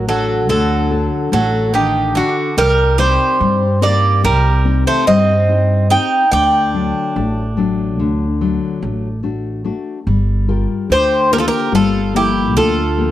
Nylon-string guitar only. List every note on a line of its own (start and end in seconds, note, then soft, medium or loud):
0.00 0.47 F#3 medium
0.07 0.74 D4 medium
0.07 0.74 F#4 medium
0.07 0.75 A4 medium
0.49 1.30 D3 medium
0.90 1.57 D4 soft
0.90 1.58 F#4 soft
0.90 1.58 A4 medium
1.32 2.13 A3 medium
1.73 2.14 D4 soft
1.73 2.15 A4 soft
1.73 2.41 F#5 soft
2.15 2.49 D4 soft
2.15 2.49 F#4 soft
2.15 2.49 A4 medium
2.57 3.38 C3 medium
2.98 3.65 C4 soft
2.98 3.66 D#4 soft
2.98 3.66 G4 medium
3.40 4.21 G3 medium
3.81 4.48 C4 medium
3.81 4.49 D#4 soft
3.81 4.49 G4 medium
4.23 5.05 C3 medium
4.65 5.32 C4 medium
4.65 5.32 D#4 soft
4.65 5.32 G4 medium
5.07 5.88 G3 medium
5.48 5.89 C4 soft
5.48 5.90 D#4 soft
5.48 5.90 G4 soft
5.90 6.24 C4 soft
5.90 6.24 D#4 soft
5.90 6.24 G4 medium
6.32 7.13 D3 medium
6.74 7.41 F#3 medium
6.74 7.15 A3 soft
6.74 7.41 D4 soft
7.16 7.56 A3 medium
7.57 8.24 F#3 medium
7.57 8.23 A3 medium
7.57 8.24 D4 soft
8.00 8.80 D3 medium
8.41 9.07 F#3 medium
8.41 8.81 A3 soft
8.41 9.07 D4 soft
8.82 9.22 A3 medium
9.23 9.63 A3 soft
9.23 9.64 D4 soft
9.23 9.64 F#4 soft
9.64 9.98 A3 soft
9.64 9.98 D4 soft
9.64 9.98 F#4 medium
10.07 10.87 G3 medium
10.48 11.15 F4 medium
10.48 11.15 G4 soft
10.48 11.15 A#4 medium
10.90 11.70 D3 medium
11.31 11.98 A#3 medium
11.31 11.97 F4 soft
11.31 11.98 G4 soft
11.72 12.53 G3 medium
12.13 12.80 F3 medium
12.13 12.80 A#3 medium
12.13 12.81 G4 soft
12.56 13.11 D3 medium
12.98 13.11 F3 soft
12.98 13.11 A#3 medium
12.98 13.11 G4 soft